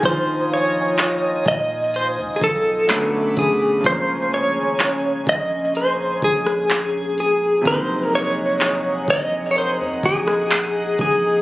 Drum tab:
HH |x---x---x---x-x-|x---x---x---x-x-|x---x---x---x-x-|
CP |----x-------x---|----x-------x---|----x-------x---|
SD |----------------|-----------r----|-----------r----|
BD |o-----o---o---o-|o-----o---o-----|o-----o---o---o-|